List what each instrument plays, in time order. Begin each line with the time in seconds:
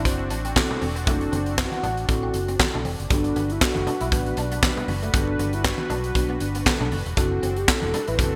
Already playing: analog synth pad C4 D4 F#4, soft synth lead D4
0.05 fingered electric bass F#1, tine electric piano C4 E4 F#4 C5, muted clean electric guitar stroke, kick, closed hi-hat
0.19 muted conga
0.30 fingered electric bass A1, clean electric guitar D4, closed hi-hat
0.45 clean electric guitar C4, closed hi-hat
0.56 tine electric piano C4 E4 F#4 A4, kick, snare, clap, high conga
0.71 muted conga, low conga
0.81 fingered electric bass E1, clean electric guitar C4, open hi-hat, high conga
0.96 clean electric guitar B3, closed hi-hat
1.07 fingered electric bass F#1, clean electric guitar A3, tine electric piano C4 E4 F#4 A4, soft synth lead D4, kick, closed hi-hat, muted conga, low conga
1.21 muted clean electric guitar stroke, closed hi-hat
1.32 fingered electric bass F#1, clean electric guitar C4, closed hi-hat, high conga
1.46 closed hi-hat
1.58 tine electric piano C4 E4 F#4 B4, soft synth lead F#4, kick, snare, clap, muted conga
1.72 closed hi-hat, muted conga, high conga
1.83 fingered electric bass A1, clean electric guitar D4, closed hi-hat, low conga
1.97 closed hi-hat
2.08 fingered electric bass A1, tine electric piano C4 E4 F#4 A4, soft synth lead F#4, kick, closed hi-hat, muted conga
2.23 clean electric guitar C4
2.34 fingered electric bass F#1, muted clean electric guitar stroke, closed hi-hat
2.48 clean electric guitar C4, closed hi-hat
2.60 tine electric piano C4 E4 F#4 A4, muted clean electric guitar stroke, kick, snare, clap, high conga
2.74 fingered electric bass B1, clean electric guitar D4, muted conga, low conga
2.85 fingered electric bass E1, clean electric guitar C4, open hi-hat, high conga
3.00 fingered electric bass F#1, closed hi-hat
3.10 fingered electric bass G1, analog synth pad G3 F#4 B4, clean electric guitar G3, tine electric piano B3 D4 F#4 A4, soft synth lead D4, kick, closed hi-hat
3.24 muted clean electric guitar stroke, closed hi-hat, muted conga
3.36 fingered electric bass G1, clean electric guitar B3, closed hi-hat, high conga
3.50 soft synth lead E4, closed hi-hat
3.61 tine electric piano B3 D4 F#4 A4, soft synth lead F#4, muted clean electric guitar stroke, kick, snare, clap, muted conga
3.75 fingered electric bass F#1, closed hi-hat, high conga
3.87 clean electric guitar D4, closed hi-hat, low conga
4.01 fingered electric bass B1, clean electric guitar E4, closed hi-hat
4.12 fingered electric bass A1, tine electric piano B3 D4 F#4 B4, muted clean electric guitar stroke, kick, closed hi-hat
4.26 closed hi-hat, muted conga
4.37 fingered electric bass B1, clean electric guitar D4, soft synth lead D4, closed hi-hat
4.52 clean electric guitar B3, closed hi-hat
4.63 tine electric piano B3 D4 F#4 B4, muted clean electric guitar stroke, kick, snare, clap, muted conga, high conga
4.77 closed hi-hat, muted conga, low conga
4.88 fingered electric bass F#1, clean electric guitar B3, open hi-hat, high conga
5.03 clean electric guitar A3, closed hi-hat
5.13 fingered electric bass G1, clean electric guitar G3, tine electric piano B3 D4 F#4 A4, soft synth lead D4, kick, closed hi-hat, muted conga
5.27 muted clean electric guitar stroke, muted conga
5.39 fingered electric bass G1, clean electric guitar B3, closed hi-hat, high conga
5.53 soft synth lead E4, closed hi-hat
5.64 tine electric piano B3 D4 F#4 B4, soft synth lead F#4, kick, snare, clap, muted conga
5.78 muted conga, high conga
5.90 fingered electric bass B1, clean electric guitar D4, closed hi-hat, low conga
6.04 closed hi-hat
6.15 fingered electric bass B1, tine electric piano B3 D4 F#4 B4, kick, closed hi-hat, muted conga
6.29 clean electric guitar B3, muted conga
6.40 fingered electric bass G1, soft synth lead D4, muted clean electric guitar stroke, closed hi-hat
6.55 clean electric guitar B3, closed hi-hat
6.66 tine electric piano B3 D4 F#4 A4, muted clean electric guitar stroke, kick, snare, clap, high conga
6.80 fingered electric bass B1, clean electric guitar D4, low conga
6.92 fingered electric bass F#1, clean electric guitar B3, open hi-hat, high conga
7.06 fingered electric bass E1, closed hi-hat
7.17 fingered electric bass F#1, tine electric piano C4 E4 F#4 A4, analog synth pad C4 D4 F#4, clean electric guitar D4, soft synth lead F#4, kick, closed hi-hat, muted conga
7.32 muted clean electric guitar stroke
7.43 fingered electric bass F#1, clean electric guitar C4, closed hi-hat, high conga
7.56 soft synth lead G4, closed hi-hat
7.68 tine electric piano C4 E4 F#4 A4, soft synth lead A4, muted clean electric guitar stroke, kick, snare, clap, muted conga
7.82 fingered electric bass E1, closed hi-hat, high conga
7.94 clean electric guitar D4, closed hi-hat, low conga
8.08 fingered electric bass A1, clean electric guitar E4, soft synth lead B4, closed hi-hat
8.19 fingered electric bass F#1, tine electric piano C4 E4 F#4 B4, soft synth lead A4, muted clean electric guitar stroke, kick, closed hi-hat, muted conga